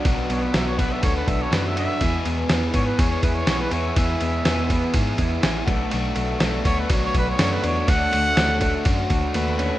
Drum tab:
RD |xxxxxxxx|xxxxxxxx|xxxxxxxx|xxxxxxxx|
SD |--o---o-|--o---o-|--o---o-|--o---o-|
BD |o--ooo--|o--ooo--|o--ooo-o|---ooo--|

RD |xxxxxxxx|
SD |--o-----|
BD |o--ooo--|